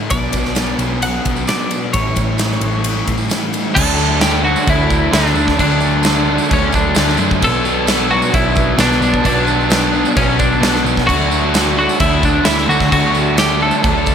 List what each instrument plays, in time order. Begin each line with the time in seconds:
Already playing: overdriven electric guitar A2 D3 E3 A3 D4, distorted electric guitar A3
0.10 picked electric bass B1, overdriven electric guitar B2 F#3 B3 D4, clean electric guitar D5, kick, ride, tambourine
0.22 tambourine
0.32 picked electric bass B1, distorted electric guitar B3, kick, ride, tambourine
0.36 distorted electric guitar F#3
0.45 snare
0.55 distorted electric guitar B2 F#3, snare, ride, tambourine
0.59 distorted electric guitar B3
0.67 tambourine
0.79 picked electric bass B1, distorted electric guitar B3, ride, tambourine
0.83 distorted electric guitar F#3
1.02 clean electric guitar F#5, ride
1.14 tambourine
1.25 picked electric bass B1, distorted electric guitar B3, kick, ride, tambourine
1.30 distorted electric guitar F#3
1.36 tambourine
1.47 distorted electric guitar B2 F#3 B3, clean electric guitar D5, snare, ride, tambourine
1.71 ride, tambourine
1.82 tambourine
1.92 picked electric bass A1, overdriven electric guitar A2 E3 G3 C#4 E4, clean electric guitar C#5, kick, ride
1.96 distorted electric guitar A3
2.16 picked electric bass A1, distorted electric guitar E3 A3, kick, ride, tambourine
2.38 distorted electric guitar A2 E3 A3, snare, ride, tambourine
2.51 snare
2.61 picked electric bass A1, distorted electric guitar E3 A3, ride
2.72 tambourine
2.84 ride
2.95 tambourine
3.07 picked electric bass A1, distorted electric guitar E3 A3, kick, ride, tambourine
3.18 tambourine
3.28 distorted electric guitar A2 E3 A3, snare, ride, tambourine
3.41 tambourine
3.53 ride, tambourine
3.64 tambourine
3.74 picked electric bass D2, overdriven electric guitar D3 F#3 A3, clean electric guitar A4, kick, crash
3.78 overdriven electric guitar D4
3.87 tambourine
3.98 overdriven electric guitar F#3 A3 D4, tambourine
4.21 overdriven electric guitar D3 F#3 A3 D4, clean electric guitar G4, snare, tambourine, crash
4.43 overdriven electric guitar F#3 A3 D4, clean electric guitar F#4, tambourine
4.56 tambourine
4.65 picked electric bass D2, distorted electric guitar D3 A3 D4, kick, crash
4.70 clean electric guitar E4
4.90 kick, tambourine
5.11 picked electric bass D2, overdriven electric guitar D3 F#3 A3 D4, clean electric guitar D4, snare, tambourine, crash
5.24 snare, tambourine
5.33 picked electric bass D2, overdriven electric guitar F#3 A3 D4, tambourine
5.48 kick, snare
5.56 picked electric bass D2, overdriven electric guitar D3 F#3 A3 D4, kick, crash
5.60 clean electric guitar D4
5.70 tambourine
5.80 overdriven electric guitar F#3 A3 D4, tambourine
6.03 overdriven electric guitar D3 F#3 A3, snare, tambourine, crash
6.07 overdriven electric guitar D4
6.16 tambourine
6.26 overdriven electric guitar F#3 A3 D4, tambourine
6.38 tambourine
6.49 picked electric bass D2, distorted electric guitar D3 A3 D4, clean electric guitar C#4, kick, tambourine, crash
6.72 clean electric guitar D4, kick, tambourine
6.95 picked electric bass D2, overdriven electric guitar D3 F#3 A3 D4, snare, tambourine, crash
7.08 snare, tambourine
7.17 picked electric bass F#2, overdriven electric guitar F#3 A3 D4, tambourine
7.31 kick, tambourine
7.40 picked electric bass B1, overdriven electric guitar B2 F#3 B3 D4, kick, crash
7.44 clean electric guitar A4
7.54 tambourine
7.64 overdriven electric guitar F#3 B3 D4, tambourine
7.85 overdriven electric guitar B2 F#3 B3 D4, snare, tambourine, crash
7.98 tambourine
8.09 overdriven electric guitar F#3 B3 D4, clean electric guitar F#4, tambourine
8.22 tambourine
8.33 picked electric bass B1, distorted electric guitar B2 F#3 B3, clean electric guitar E4, kick, tambourine, crash
8.55 kick, tambourine
8.77 picked electric bass B1, overdriven electric guitar B2 F#3 B3 D4, clean electric guitar D4, snare, tambourine, crash
8.91 snare
9.00 picked electric bass B1, overdriven electric guitar F#3 B3 D4, clean electric guitar D4, tambourine
9.13 kick, tambourine
9.21 picked electric bass B1, overdriven electric guitar B2 F#3 B3 D4, tambourine
9.25 clean electric guitar D4, kick, crash
9.36 tambourine
9.45 overdriven electric guitar F#3 B3 D4, tambourine
9.60 tambourine
9.68 overdriven electric guitar B2 F#3 B3 D4, snare, tambourine, crash
9.81 tambourine
9.92 overdriven electric guitar F#3 B3 D4, tambourine
10.05 tambourine
10.15 picked electric bass B1, distorted electric guitar B2 F#3 B3, clean electric guitar C#4, kick, tambourine, crash
10.29 tambourine
10.39 clean electric guitar D4, kick, tambourine
10.52 tambourine
10.60 picked electric bass B1, overdriven electric guitar B2 F#3 B3 D4, snare, tambourine, crash
10.76 snare
10.84 picked electric bass B1, overdriven electric guitar F#3 B3 D4, tambourine
10.97 kick, snare, tambourine
11.07 picked electric bass D2, overdriven electric guitar D3 F#3 A3, clean electric guitar F#4, kick, crash
11.12 overdriven electric guitar D4
11.21 tambourine
11.30 overdriven electric guitar F#3 A3 D4, tambourine
11.53 overdriven electric guitar D3 F#3 A3 D4, snare, tambourine, crash
11.77 overdriven electric guitar F#3 A3 D4, clean electric guitar F#4, tambourine
11.89 tambourine
12.00 picked electric bass D2, distorted electric guitar D3 A3 D4, clean electric guitar E4, kick, tambourine, crash
12.23 clean electric guitar D4, kick, tambourine
12.43 picked electric bass D2, overdriven electric guitar D3 F#3 A3 D4, clean electric guitar E4, snare, tambourine, crash
12.58 snare, tambourine
12.66 picked electric bass D2, overdriven electric guitar F#3 A3 D4, clean electric guitar F#4
12.70 tambourine
12.80 kick, snare
12.89 picked electric bass D2, overdriven electric guitar D3 F#3 A3 D4, clean electric guitar F#4, kick, crash
13.12 overdriven electric guitar F#3 A3 D4, tambourine
13.35 overdriven electric guitar D3 F#3 A3 D4, snare, tambourine, crash
13.39 clean electric guitar G4
13.50 tambourine
13.59 overdriven electric guitar F#3 A3 D4, clean electric guitar A4, tambourine
13.71 tambourine
13.82 picked electric bass D2, distorted electric guitar D3 A3 D4, kick, tambourine, crash
14.06 kick, tambourine